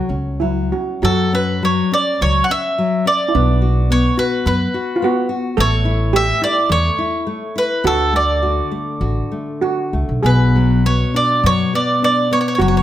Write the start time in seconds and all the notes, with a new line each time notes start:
Already playing: F#4 A4
0.09 C#2 C#4
0.40 F#3 E4
0.72 C#4 F#4
1.02 F#2 F#3 F#4 A4
1.33 C#4 B4
1.63 F#3 C#5
1.92 C#4 D5
2.21 C#2 F#3 C#5
2.44 F#5
2.50 C#4 E5
2.78 F#3
3.06 C#4 D5
3.28 E4
3.35 B1 B3 D4
3.62 F#4
3.90 B3 C#5
4.17 F#4 B4
4.46 F#2 B3 B4
4.74 F#4
4.96 F4
5.02 B3 F#4
5.29 F#4
5.57 A1 A3 A4 C#5
5.85 E4
6.13 A3 G4 E5
6.41 E4 D5
6.69 E2 A3 C#5
6.98 E4
7.27 A3
7.56 E4 B4
7.84 D2 D3 F#4 A4
8.13 A3 D5
8.43 F#4
8.71 A3
9.01 A1 F#4
9.32 A3
9.61 F#4
9.93 C#2 A3
10.09 B1
10.23 B1 B2 G#4 B4
10.56 F#3
10.86 B3 C#5
11.14 D4 D5
11.44 F#2 F#3 C#5
11.74 B3 D5
12.02 D4 D5
12.31 B3 C#5
12.41 C#5
12.48 C#5
12.55 F#4 C#5
12.59 F#1 F#3 C#5
12.68 C#5
12.77 C#5